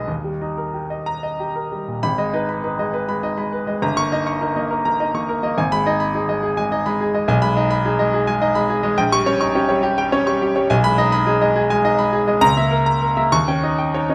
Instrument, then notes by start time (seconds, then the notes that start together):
grand piano
Already playing: B1 G#3 D#4 G#4 B4 D#5
0.08 D#2
0.24 G3
0.41 D#4
0.58 A#4
0.74 G4
0.90 D#5
1.06 A#5
1.23 D#5
1.40 G4
1.56 A#4
1.72 G3
1.88 A#2
2.03 G#1 B5
2.18 G#3 D#5
2.33 D#4 B4
2.49 B5
2.64 D#4 B4
2.79 G#3 D#5
2.94 B4
3.09 G#3 B5
3.23 D#4 D#5
3.38 G#3 B5
3.53 B4
3.67 G#3 D#5
3.82 G1 A#5
3.97 A#3 C#6
4.12 D#4 D#5
4.27 C#6
4.41 D#4 A#4
4.56 A#3 D#5
4.71 A#4
4.85 A#3 A#5
5.00 D#4 D#5
5.14 A#3 C#6
5.29 A#4
5.43 A#3 D#5
5.58 G#1 G#5
5.72 G#3 B5
5.86 D#4 D#5
6.00 B5
6.14 D#4 G#4
6.29 G#3 D#5
6.43 G#4
6.57 G#3 G#5
6.72 D#4 D#5
6.86 G#3 B5
7.01 G#4
7.14 G#3 D#5
7.28 B1 G#5
7.42 G#3 B5
7.57 D#4 D#5
7.71 B5
7.85 D#4 G#4
7.99 G#3 D#5
8.14 G#4
8.27 G#3 G#5
8.42 D#4 D#5
8.55 G#3 B5
8.70 G#4
8.83 G#3 D#5
8.98 A#1 G5
9.12 G3 C#6
9.26 C#4 C#5
9.40 D#4 C#6
9.55 C#4 G4
9.69 G3 C#5
9.83 G4
9.98 G3 G5
10.12 C#4 C#5
10.27 G3 C#6
10.42 G4
10.56 G3 C#5
10.70 B1 G#5
10.84 G#3 B5
10.98 D#4 D#5
11.12 B5
11.27 D#4 G#4
11.41 G#3 D#5
11.56 G#4
11.70 G#3 G#5
11.85 D#4 D#5
11.98 G#3 B5
12.13 G#4
12.28 G#3 D#5
12.41 C#2 A#5
12.57 A#3 E5
12.71 A#4
12.86 A#5
13.02 A#4
13.17 A#3 E5
13.32 D#2 C#6
13.48 C#4 G5
13.63 D#4 D#5
13.78 G5
13.94 D#4 C#5
14.09 C#4 D#5